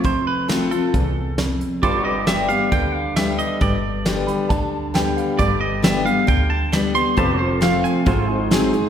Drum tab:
HH |x-xxx-xx|x-xxx-xx|x-xxx-xx|x-xxx-xx|
SD |--o---o-|--o---o-|--o---o-|--o---o-|
BD |o---o---|o---o---|o---o---|o---o---|

HH |x-xxx-xx|
SD |--o---o-|
BD |o---o---|